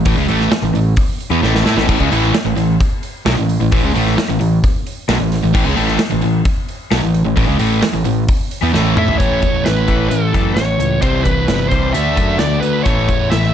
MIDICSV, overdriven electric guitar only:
0, 0, Header, 1, 3, 480
1, 0, Start_track
1, 0, Key_signature, 3, "major"
1, 0, Tempo, 457317
1, 61, Time_signature, 4, 2, 24, 8
1, 14211, End_track
2, 0, Start_track
2, 0, Title_t, "Overdriven electric guitar"
2, 0, Program_c, 0, 29
2, 56, Note_on_c, 0, 45, 87
2, 65, Note_on_c, 0, 52, 106
2, 172, Note_off_c, 0, 45, 0
2, 176, Note_off_c, 0, 52, 0
2, 178, Note_on_c, 0, 49, 83
2, 184, Note_on_c, 0, 56, 94
2, 291, Note_off_c, 0, 49, 0
2, 291, Note_off_c, 0, 56, 0
2, 295, Note_on_c, 0, 45, 77
2, 295, Note_on_c, 0, 52, 98
2, 304, Note_on_c, 0, 57, 104
2, 522, Note_off_c, 0, 45, 0
2, 532, Note_off_c, 0, 52, 0
2, 536, Note_off_c, 0, 57, 0
2, 653, Note_on_c, 0, 45, 65
2, 661, Note_on_c, 0, 52, 64
2, 757, Note_off_c, 0, 45, 0
2, 761, Note_off_c, 0, 52, 0
2, 770, Note_on_c, 0, 45, 60
2, 774, Note_on_c, 0, 52, 64
2, 969, Note_off_c, 0, 45, 0
2, 971, Note_off_c, 0, 52, 0
2, 1367, Note_on_c, 0, 52, 70
2, 1374, Note_on_c, 0, 59, 93
2, 1481, Note_off_c, 0, 52, 0
2, 1490, Note_off_c, 0, 59, 0
2, 1490, Note_on_c, 0, 45, 76
2, 1494, Note_on_c, 0, 52, 95
2, 1499, Note_on_c, 0, 57, 94
2, 1710, Note_off_c, 0, 57, 0
2, 1718, Note_off_c, 0, 52, 0
2, 1722, Note_on_c, 0, 57, 83
2, 1730, Note_off_c, 0, 45, 0
2, 1731, Note_on_c, 0, 64, 96
2, 1846, Note_off_c, 0, 57, 0
2, 1851, Note_off_c, 0, 64, 0
2, 1855, Note_on_c, 0, 45, 88
2, 1861, Note_on_c, 0, 52, 97
2, 1954, Note_off_c, 0, 45, 0
2, 1962, Note_off_c, 0, 52, 0
2, 1966, Note_on_c, 0, 45, 89
2, 1975, Note_on_c, 0, 52, 107
2, 2089, Note_off_c, 0, 45, 0
2, 2093, Note_off_c, 0, 52, 0
2, 2101, Note_on_c, 0, 49, 93
2, 2113, Note_on_c, 0, 56, 109
2, 2209, Note_off_c, 0, 49, 0
2, 2213, Note_on_c, 0, 45, 92
2, 2215, Note_off_c, 0, 56, 0
2, 2219, Note_on_c, 0, 52, 98
2, 2223, Note_on_c, 0, 57, 100
2, 2452, Note_off_c, 0, 45, 0
2, 2455, Note_off_c, 0, 52, 0
2, 2457, Note_off_c, 0, 57, 0
2, 2575, Note_on_c, 0, 52, 71
2, 2576, Note_on_c, 0, 45, 67
2, 2679, Note_off_c, 0, 45, 0
2, 2681, Note_off_c, 0, 52, 0
2, 2692, Note_on_c, 0, 45, 58
2, 2693, Note_on_c, 0, 52, 73
2, 2891, Note_off_c, 0, 45, 0
2, 2891, Note_off_c, 0, 52, 0
2, 3421, Note_on_c, 0, 47, 87
2, 3426, Note_on_c, 0, 54, 82
2, 3536, Note_off_c, 0, 47, 0
2, 3538, Note_off_c, 0, 54, 0
2, 3544, Note_on_c, 0, 45, 62
2, 3545, Note_on_c, 0, 52, 67
2, 3737, Note_off_c, 0, 45, 0
2, 3737, Note_off_c, 0, 52, 0
2, 3779, Note_on_c, 0, 45, 67
2, 3781, Note_on_c, 0, 52, 66
2, 3887, Note_off_c, 0, 45, 0
2, 3896, Note_off_c, 0, 52, 0
2, 3899, Note_on_c, 0, 45, 94
2, 3909, Note_on_c, 0, 52, 113
2, 4015, Note_off_c, 0, 45, 0
2, 4020, Note_off_c, 0, 52, 0
2, 4033, Note_on_c, 0, 49, 81
2, 4038, Note_on_c, 0, 56, 99
2, 4134, Note_off_c, 0, 49, 0
2, 4138, Note_off_c, 0, 56, 0
2, 4138, Note_on_c, 0, 45, 88
2, 4142, Note_on_c, 0, 52, 97
2, 4147, Note_on_c, 0, 57, 96
2, 4363, Note_off_c, 0, 45, 0
2, 4376, Note_off_c, 0, 52, 0
2, 4378, Note_off_c, 0, 57, 0
2, 4502, Note_on_c, 0, 45, 63
2, 4510, Note_on_c, 0, 52, 80
2, 4600, Note_off_c, 0, 45, 0
2, 4607, Note_off_c, 0, 52, 0
2, 4613, Note_on_c, 0, 45, 63
2, 4619, Note_on_c, 0, 52, 65
2, 4810, Note_off_c, 0, 45, 0
2, 4814, Note_off_c, 0, 52, 0
2, 5335, Note_on_c, 0, 47, 95
2, 5345, Note_on_c, 0, 54, 104
2, 5447, Note_off_c, 0, 47, 0
2, 5448, Note_off_c, 0, 54, 0
2, 5451, Note_on_c, 0, 45, 62
2, 5452, Note_on_c, 0, 52, 68
2, 5649, Note_off_c, 0, 45, 0
2, 5649, Note_off_c, 0, 52, 0
2, 5705, Note_on_c, 0, 45, 72
2, 5706, Note_on_c, 0, 52, 73
2, 5803, Note_off_c, 0, 45, 0
2, 5811, Note_off_c, 0, 52, 0
2, 5816, Note_on_c, 0, 45, 106
2, 5823, Note_on_c, 0, 52, 112
2, 5931, Note_off_c, 0, 45, 0
2, 5935, Note_off_c, 0, 52, 0
2, 5935, Note_on_c, 0, 49, 83
2, 5939, Note_on_c, 0, 56, 98
2, 6043, Note_off_c, 0, 49, 0
2, 6047, Note_off_c, 0, 56, 0
2, 6047, Note_on_c, 0, 45, 90
2, 6052, Note_on_c, 0, 52, 83
2, 6057, Note_on_c, 0, 57, 103
2, 6284, Note_off_c, 0, 45, 0
2, 6289, Note_off_c, 0, 52, 0
2, 6292, Note_off_c, 0, 57, 0
2, 6412, Note_on_c, 0, 45, 68
2, 6415, Note_on_c, 0, 52, 70
2, 6528, Note_off_c, 0, 52, 0
2, 6529, Note_off_c, 0, 45, 0
2, 6541, Note_on_c, 0, 52, 74
2, 6542, Note_on_c, 0, 45, 62
2, 6732, Note_off_c, 0, 52, 0
2, 6733, Note_off_c, 0, 45, 0
2, 7251, Note_on_c, 0, 47, 92
2, 7259, Note_on_c, 0, 54, 95
2, 7367, Note_off_c, 0, 47, 0
2, 7371, Note_off_c, 0, 54, 0
2, 7376, Note_on_c, 0, 45, 63
2, 7381, Note_on_c, 0, 52, 72
2, 7568, Note_off_c, 0, 45, 0
2, 7571, Note_off_c, 0, 52, 0
2, 7611, Note_on_c, 0, 45, 57
2, 7618, Note_on_c, 0, 52, 65
2, 7711, Note_off_c, 0, 45, 0
2, 7721, Note_off_c, 0, 52, 0
2, 7723, Note_on_c, 0, 45, 105
2, 7734, Note_on_c, 0, 52, 91
2, 7829, Note_off_c, 0, 45, 0
2, 7833, Note_on_c, 0, 49, 91
2, 7838, Note_off_c, 0, 52, 0
2, 7842, Note_on_c, 0, 56, 102
2, 7958, Note_off_c, 0, 49, 0
2, 7962, Note_off_c, 0, 56, 0
2, 7967, Note_on_c, 0, 45, 85
2, 7974, Note_on_c, 0, 52, 89
2, 7979, Note_on_c, 0, 57, 98
2, 8204, Note_off_c, 0, 45, 0
2, 8208, Note_off_c, 0, 52, 0
2, 8210, Note_off_c, 0, 57, 0
2, 8329, Note_on_c, 0, 45, 63
2, 8329, Note_on_c, 0, 52, 76
2, 8431, Note_off_c, 0, 45, 0
2, 8436, Note_off_c, 0, 52, 0
2, 8444, Note_on_c, 0, 45, 64
2, 8449, Note_on_c, 0, 52, 74
2, 8641, Note_off_c, 0, 45, 0
2, 8644, Note_off_c, 0, 52, 0
2, 9041, Note_on_c, 0, 52, 78
2, 9050, Note_on_c, 0, 59, 88
2, 9152, Note_off_c, 0, 52, 0
2, 9161, Note_off_c, 0, 59, 0
2, 9161, Note_on_c, 0, 45, 87
2, 9165, Note_on_c, 0, 52, 88
2, 9170, Note_on_c, 0, 57, 105
2, 9400, Note_off_c, 0, 45, 0
2, 9400, Note_off_c, 0, 57, 0
2, 9402, Note_off_c, 0, 52, 0
2, 9412, Note_on_c, 0, 57, 83
2, 9419, Note_on_c, 0, 64, 102
2, 9526, Note_off_c, 0, 57, 0
2, 9528, Note_on_c, 0, 45, 76
2, 9529, Note_off_c, 0, 64, 0
2, 9535, Note_on_c, 0, 52, 98
2, 9637, Note_off_c, 0, 45, 0
2, 9640, Note_off_c, 0, 52, 0
2, 9649, Note_on_c, 0, 45, 81
2, 9652, Note_on_c, 0, 52, 89
2, 9655, Note_on_c, 0, 57, 94
2, 9877, Note_off_c, 0, 45, 0
2, 9878, Note_off_c, 0, 52, 0
2, 9880, Note_off_c, 0, 57, 0
2, 9891, Note_on_c, 0, 45, 66
2, 9900, Note_on_c, 0, 52, 68
2, 10108, Note_off_c, 0, 45, 0
2, 10113, Note_off_c, 0, 52, 0
2, 10133, Note_on_c, 0, 45, 71
2, 10134, Note_on_c, 0, 52, 76
2, 10349, Note_off_c, 0, 45, 0
2, 10349, Note_off_c, 0, 52, 0
2, 10361, Note_on_c, 0, 45, 80
2, 10366, Note_on_c, 0, 52, 88
2, 10368, Note_on_c, 0, 57, 86
2, 10592, Note_off_c, 0, 45, 0
2, 10595, Note_off_c, 0, 52, 0
2, 10596, Note_off_c, 0, 57, 0
2, 10607, Note_on_c, 0, 45, 76
2, 10607, Note_on_c, 0, 52, 75
2, 10826, Note_off_c, 0, 45, 0
2, 10826, Note_off_c, 0, 52, 0
2, 10846, Note_on_c, 0, 45, 82
2, 10853, Note_on_c, 0, 52, 84
2, 10857, Note_on_c, 0, 57, 74
2, 11071, Note_off_c, 0, 45, 0
2, 11071, Note_off_c, 0, 52, 0
2, 11080, Note_off_c, 0, 57, 0
2, 11083, Note_on_c, 0, 45, 64
2, 11084, Note_on_c, 0, 52, 74
2, 11304, Note_off_c, 0, 45, 0
2, 11305, Note_off_c, 0, 52, 0
2, 11323, Note_on_c, 0, 45, 64
2, 11328, Note_on_c, 0, 52, 64
2, 11544, Note_off_c, 0, 45, 0
2, 11547, Note_off_c, 0, 52, 0
2, 11563, Note_on_c, 0, 48, 98
2, 11572, Note_on_c, 0, 52, 91
2, 11576, Note_on_c, 0, 55, 96
2, 11788, Note_off_c, 0, 48, 0
2, 11792, Note_off_c, 0, 52, 0
2, 11800, Note_off_c, 0, 55, 0
2, 11801, Note_on_c, 0, 48, 74
2, 11804, Note_on_c, 0, 52, 78
2, 12023, Note_off_c, 0, 48, 0
2, 12025, Note_off_c, 0, 52, 0
2, 12053, Note_on_c, 0, 48, 77
2, 12055, Note_on_c, 0, 52, 77
2, 12270, Note_off_c, 0, 48, 0
2, 12270, Note_off_c, 0, 52, 0
2, 12296, Note_on_c, 0, 48, 85
2, 12300, Note_on_c, 0, 52, 83
2, 12305, Note_on_c, 0, 55, 87
2, 12521, Note_off_c, 0, 48, 0
2, 12523, Note_off_c, 0, 52, 0
2, 12525, Note_off_c, 0, 55, 0
2, 12535, Note_on_c, 0, 50, 80
2, 12536, Note_on_c, 0, 57, 86
2, 12543, Note_on_c, 0, 62, 96
2, 12758, Note_off_c, 0, 57, 0
2, 12761, Note_off_c, 0, 50, 0
2, 12765, Note_off_c, 0, 62, 0
2, 12771, Note_on_c, 0, 57, 77
2, 12774, Note_on_c, 0, 50, 80
2, 12780, Note_on_c, 0, 62, 92
2, 12998, Note_off_c, 0, 57, 0
2, 13000, Note_off_c, 0, 50, 0
2, 13003, Note_off_c, 0, 62, 0
2, 13016, Note_on_c, 0, 50, 71
2, 13021, Note_on_c, 0, 57, 74
2, 13232, Note_off_c, 0, 50, 0
2, 13234, Note_off_c, 0, 57, 0
2, 13254, Note_on_c, 0, 50, 64
2, 13256, Note_on_c, 0, 57, 67
2, 13471, Note_off_c, 0, 50, 0
2, 13471, Note_off_c, 0, 57, 0
2, 13486, Note_on_c, 0, 45, 93
2, 13494, Note_on_c, 0, 52, 86
2, 13502, Note_on_c, 0, 57, 101
2, 13716, Note_off_c, 0, 45, 0
2, 13721, Note_off_c, 0, 52, 0
2, 13724, Note_off_c, 0, 57, 0
2, 13732, Note_on_c, 0, 45, 64
2, 13737, Note_on_c, 0, 52, 66
2, 13950, Note_off_c, 0, 45, 0
2, 13952, Note_off_c, 0, 52, 0
2, 13972, Note_on_c, 0, 45, 72
2, 13978, Note_on_c, 0, 52, 84
2, 14190, Note_off_c, 0, 45, 0
2, 14193, Note_off_c, 0, 52, 0
2, 14211, End_track
3, 0, Start_track
3, 0, Title_t, "Muted overdriven electric guitar strokes"
3, 534, Note_on_c, 9, 29, 53
3, 639, Note_off_c, 9, 29, 0
3, 2467, Note_on_c, 9, 29, 58
3, 2572, Note_off_c, 9, 29, 0
3, 4376, Note_on_c, 9, 29, 59
3, 4481, Note_off_c, 9, 29, 0
3, 6297, Note_on_c, 9, 29, 56
3, 6402, Note_off_c, 9, 29, 0
3, 8215, Note_on_c, 9, 29, 60
3, 8320, Note_off_c, 9, 29, 0
3, 14211, End_track
0, 0, End_of_file